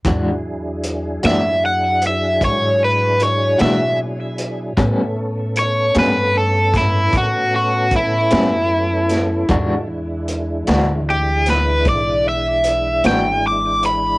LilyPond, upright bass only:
\new Staff \with { instrumentName = "Upright bass" } { \clef bass \time 12/8 \key e \mixolydian \tempo 4. = 51 e,4. fis,4. gis,4. b,4. | a,4. g,4. a,4. fis,4. | e,4. d,4. b,,4. gis,,4. | }